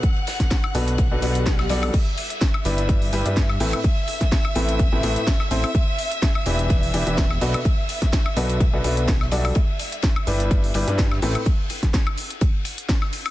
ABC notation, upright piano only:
X:1
M:4/4
L:1/16
Q:"Swing 16ths" 1/4=126
K:Ador
V:1 name="Upright piano"
z6 [B,,DFAB]2 z [B,,DFAB] [B,,DFAB]2 z2 [G,DFAd]2 | z6 [G,DEGB]4 [G,DEGB] [G,DEGB] z2 [A,,CEAB] z | z6 [A,,CEAB]2 z [A,,CEAB] [A,,CEAB] z3 [CEAc] z | z6 [E,DEGB]4 [E,DEGB] [E,DEGB] z2 [B,,DFAB] z |
z6 [B,,DFAB]2 z [B,,DFAB] [B,,DFAB]2 z2 [G,DFAd]2 | z6 [G,DEGB]4 [G,DEGB] [G,DEGB] z2 [A,,CEAB] z | z16 |]